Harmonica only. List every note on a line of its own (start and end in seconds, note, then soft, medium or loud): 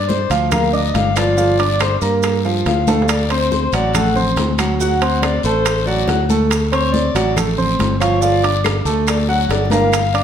0.00 0.11 D5 loud
0.09 0.31 C5 medium
0.52 0.72 F5 medium
0.73 0.97 D#5 medium
0.95 1.16 F5 loud
1.17 1.24 A4 medium
1.17 1.23 B4 medium
1.17 1.77 D5 medium
1.81 1.94 C5 medium
2.67 3.11 F5 medium
3.09 3.33 D5 medium
3.31 3.76 C5 medium
3.74 3.96 D5 medium
3.95 4.16 F#5 medium
4.81 5.24 F#5 medium
5.23 5.44 D5 medium
5.44 5.88 C5 loud
5.87 6.08 D5 medium
6.09 6.21 F#5 medium
6.73 6.95 C#5 loud
6.94 7.37 D5 loud
8.01 8.23 C#5 medium
8.22 8.65 D5 medium
9.08 9.28 D5 medium
9.29 9.53 F#5 loud
9.52 9.71 D5 medium
9.72 10.24 F5 medium